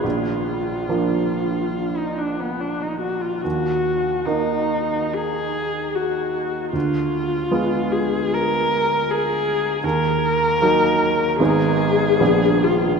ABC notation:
X:1
M:4/4
L:1/16
Q:1/4=74
K:Ebm
V:1 name="Viola"
F8- F E =D C D E G F | G4 E4 A4 G4 | F6 A2 B4 A4 | B8 A6 F2 |]
V:2 name="Grand piano"
B,,,4 [F,B,=D]12 | E,,4 [E,B,E]12 | =D,,4 [A,=B,F]12 | E,,4 [G,B,E]4 [A,,,A,CE]4 [B,,,F,C=D]4 |]